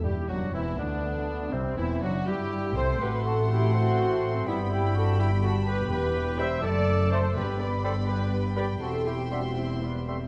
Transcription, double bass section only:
\new Staff \with { instrumentName = "Double bass section" } { \clef bass \time 6/8 \key e \minor \tempo 4. = 82 g,,8 fis,,8 e,,8 d,4. | c,8 e,,8 fis,,8 g,,4 c,8 | a,,2. | g,,2. |
\key g \major e,,4. fis,,4. | g,,2. | e,,2. | }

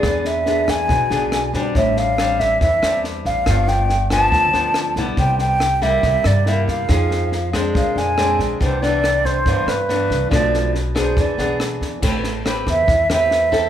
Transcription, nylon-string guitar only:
\new Staff \with { instrumentName = "Nylon-string guitar" } { \time 4/4 \key c \major \tempo 4 = 140 << { <b d' aes'>4 <b d' gis'>4. <b d' gis'>4 <g c' d'>8~ | <g c' d'>4 <g c' d'>4 r8 <g c' d'>4. | <f b d'>4 r8 <f b d'>4 <f b d'>4 <g b e'>8~ | <g b e'>4 r8 <g bes e'>4. <g bes e'>4 |
<c' ees' aes'>4 r8 <aes c' d'>4. <aes c' d'>4 | <e b d'>8 <e b d'>4. <e b d'>8 r8 <e b d'>4 | <f a d'>4 r8 <b d' aes'>4 <b d' gis'>4. | \key a \minor <c' g' b'>8 r8 <c' g' b'>4 r8 <c' g' b'>4 <c' e' a'>8 | } \\ { e2 b,2 | a,2 e2 | g,2 d2 | c2 c2 |
f2 bes,2 | c2 g,2 | b,2 e2 | a2 e2 | } >> }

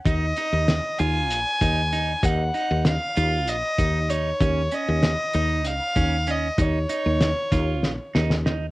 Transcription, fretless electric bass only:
\new Staff \with { instrumentName = "Fretless electric bass" } { \clef bass \time 7/8 \key ees \minor \tempo 4 = 96 ees,8 r16 ees,8 r16 ees,8 bes,,16 r16 ees,4 | ees,8 r16 ees,8 r16 ees,8 bes,,16 r16 ees,4 | ees,8 r16 ees,8 r16 ees,8 des,16 r16 ees,4 | ees,8 r16 ees,8 r16 ees,8 bes,,16 r16 ees,4 | }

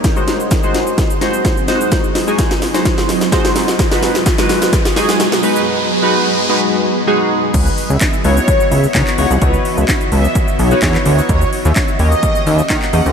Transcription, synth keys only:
\new Staff \with { instrumentName = "Synth keys" } { \time 4/4 \key cis \minor \tempo 4 = 128 r16 <gis dis' fis' bis'>8 r8 <gis dis' fis' bis'>8. r8 <gis dis' fis' bis'>8 r8 <gis dis' fis' bis'>8~ | <gis dis' fis' bis'>16 r8 <gis dis' fis' gis'>8 r8 <gis dis' fis' bis'>8. r8 <gis dis' fis' bis'>8. r16 | r16 <gis dis' fis' b'>8 r8 <gis dis' fis' b'>8. r8 <gis dis' fis' gis'>8 r8 <gis dis' fis' b'>8~ | <gis dis' fis' b'>16 r8 <gis dis' fis' b'>8 r8 <gis dis' fis' b'>8. r8 <gis dis' fis' gis'>8. r16 |
r4. <b dis' e' fis' cis''>8. r8. <b dis' e' fis' cis''>16 r16 <b dis' e' fis' cis''>16 r16 | <b dis' e' fis' cis''>4 r4. r16 <b dis' e' fis' b'>16 <b dis' e' fis' cis''>8 r16 <b dis' e' fis' cis''>16 | r4. <ais cis' dis' g' cis''>8. r8. <ais cis' dis' g' cis''>16 r16 <ais cis' dis' g' dis''>16 r16 | }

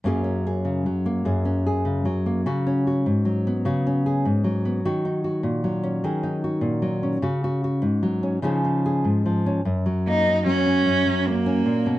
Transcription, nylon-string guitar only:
\new Staff \with { instrumentName = "Nylon-string guitar" } { \time 6/8 \key fis \major \tempo 4. = 50 << { <fis ais cis' gis'>16 cis'16 gis'8. ais16 gis'16 cis'16 gis'8. ais16 | fis'16 cis'16 fis'8. b16 fis'16 cis'16 gis'8. b16 | fis'16 dis'16 fis'8. cis'16 gis'16 dis'16 fis'8. cis'16 | fis'16 fis'16 fis'8. cis'16 <eis cis' dis' gis'>16 dis'16 gis'8. cis'16 |
r8 ais16 cis'8 cis'8. ais16 cis'8. | } \\ { fis,8. cis16 fis8 fis,8. cis16 fis8 | cis8. gis,16 fis8 cis8. gis,16 fis8 | dis8. ais,16 fis8 dis8. ais,16 fis8 | cis8. gis,16 fis8 cis8. gis,16 eis8 |
fis,16 fis8. fis8 fis,16 fis8. ais,16 b,16 | } >> }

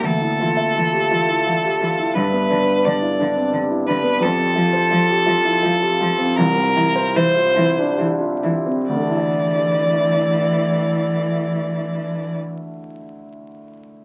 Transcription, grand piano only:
\new Staff \with { instrumentName = "Grand piano" } { \time 3/4 \key d \minor \tempo 4 = 80 d,16 e'16 f'16 e''16 f'16 g'16 f'16 e'16 f'16 g'16 f'16 e'16 | g,16 b16 d'16 b'16 d'16 e'16 d'16 c'16 d'16 e'16 d'16 b16 | f,16 c'16 f'16 c''16 f'16 g'16 f'16 e'16 f'16 g'16 f'16 c'16 | c,16 c'16 e'16 c''16 e'16 f'16 e'16 d'16 e'16 f'16 e'16 c'16 |
<d, d a e' e''>2.~ | <d, d a e' e''>2. | }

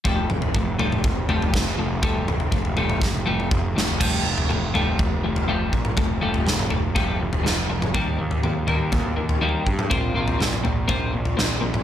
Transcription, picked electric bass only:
\new Staff \with { instrumentName = "Picked electric bass" } { \clef bass \time 4/4 \key f \mixolydian \tempo 4 = 122 f,,8 f,,8 f,,8 f,,8 f,,8 f,,8 f,,8 f,,8 | f,,8 f,,8 f,,8 f,,8 f,,8 f,,8 f,,8 f,,8 | f,,8 f,,8 f,,8 f,,8 f,,8 f,,8 f,,8 bes,,8 | f,,8 f,,8 f,,8 f,,8 f,,8 f,,8 f,,8 f,,8 |
ees,8 ees,8 ees,8 ees,8 ees,8 ees,8 ees,8 g,8 | bes,,8 bes,,8 bes,,8 bes,,8 bes,,8 bes,,8 bes,,8 bes,,8 | }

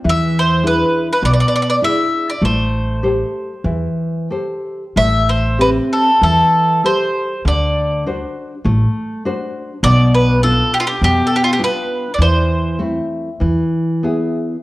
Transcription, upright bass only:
\new Staff \with { instrumentName = "Upright bass" } { \clef bass \time 4/4 \key a \minor \tempo 4 = 99 e,2 b,,8 r4. | a,,2 e,8 r4. | a,,2 e,8 r4. | d,2 a,,8 r4. |
b,,2 f,8 r4. | e,2 e,8 r4. | }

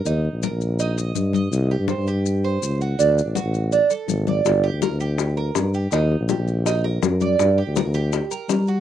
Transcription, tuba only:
\new Staff \with { instrumentName = "Tuba" } { \clef bass \time 4/4 \key g \minor \tempo 4 = 164 ees,8. bes,,8 bes,,4.~ bes,,16 g,4 | c,8. g,8 g,4.~ g,16 cis,4 | d,8. a,,8 a,,4 r8. aes,,4 | g,,8. d,8 d,4.~ d,16 g,4 |
ees,8. bes,,8 bes,,4.~ bes,,16 fis,4 | g,8. d,8 d,4 r8. g4 | }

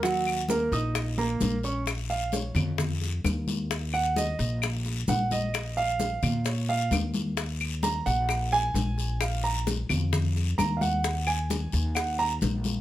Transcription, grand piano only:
\new Staff \with { instrumentName = "Grand piano" } { \time 4/4 \key ees \dorian \tempo 4 = 131 <ges ges' ges''>4 <bes bes' bes''>8 <ees' ees'' ees'''>4 <bes bes' bes''>4 <des' des'' des'''>8 | r8 f''8 des''4 r2 | r8 ges''8 ees''4 r4 ges''8 ees''8~ | ees''8 f''4. des''8 f''8 r4 |
r4 bes''8 ges''4 aes''4. | f''8 bes''8 r2 bes''8 <f'' ges''>8~ | <f'' ges''>8 aes''4. ges''8 bes''8 r4 | }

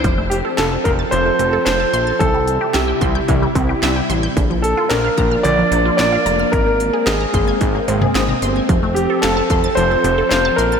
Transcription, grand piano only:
\new Staff \with { instrumentName = "Grand piano" } { \time 4/4 \key f \major \tempo 4 = 111 r8 g'8 a'8 bes'8 c''4 c''4 | a'4 g'4 r2 | r8 a'8 bes'4 d''4 d''4 | bes'4 aes'4 r2 |
r8 g'8 a'4 c''4 c''8 bes'8 | }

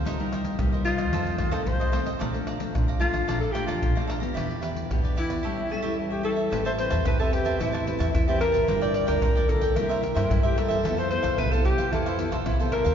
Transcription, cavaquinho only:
\new Staff \with { instrumentName = "Cavaquinho" } { \time 4/4 \key a \phrygian \tempo 4 = 111 <ees' bes' c'' ees''>8 <ees' bes' c'' ees''>8. <bes' c'' ees''>16 <ees' bes' c'' ees''>16 <bes' c'' ees''>16 <f' a' c'' ees''>8 <f' a' c'' ees''>16 <f' a' c'' ees''>16 r16 <a' c'' ees''>16 <f' a' c'' ees''>16 <a' c'' ees''>16 | <a' d'' f'' bes''>8 <d'' f'' bes''>8. <d'' f'' bes''>16 <a' d'' f'' bes''>16 <d'' f'' bes''>16 <a' d'' f'' bes''>8 <a' d'' f'' bes''>16 <a' d'' f'' bes''>16 r16 <d'' f'' bes''>16 <a' d'' f'' bes''>16 <d'' f'' bes''>16 | <e' g' b' d''>8 <e' g' b' d''>8. <g' b' d''>16 <e' g' b' d''>16 <g' b' d''>16 <g' a' cis'' e''>8 <g' a' cis'' e''>16 <g' a' cis'' e''>16 r16 <a' cis'' e''>16 <g' a' cis'' e''>16 <a' cis'' e''>16 | \key a \minor <g' c'' e'' a''>16 <c'' e'' a''>8 <c'' e'' a''>16 <g' c'' e'' a''>16 <c'' e'' a''>16 r16 <c'' e'' a''>16 <g' c'' e'' a''>16 <c'' e'' a''>16 r16 <c'' e'' a''>8 <c'' e'' a''>16 <g' c'' e'' a''>16 <c'' e'' a''>16 |
<f' bes' d'' g''>16 <bes' d'' g''>8 <bes' d'' g''>16 <f' bes' d'' g''>16 <bes' d'' g''>16 r16 <bes' d'' g''>16 <e' bes' c'' e''>16 <bes' c'' e''>16 r16 <bes' c'' e''>8 <bes' c'' e''>16 <e' bes' c'' e''>16 <bes' c'' e''>16 | <e' a' c'' f''>16 <a' c'' f''>8 <a' c'' f''>16 <e' a' c'' f''>16 <a' c'' f''>16 r16 <a' c'' f''>16 <e' a' c'' f''>16 <a' c'' f''>16 r16 <a' c'' f''>8 <a' c'' f''>16 <e' a' c'' f''>16 <a' c'' f''>16 | }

